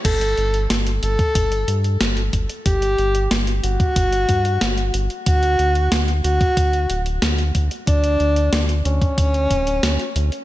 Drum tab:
CC |x---------------|----------------|----------------|----------------|
HH |xxxxxxxxxxxxxxxx|xxxxxxxxxxxxxxxx|xxxxxxxxxxxxxxxx|xxxxxxxxxxxxxxxx|
SD |----o-------o---|----o-------o---|----o-------o---|----o-------o---|
BD |o------oo-----o-|o------oo-o-----|o------oo-----o-|o------oo-o-----|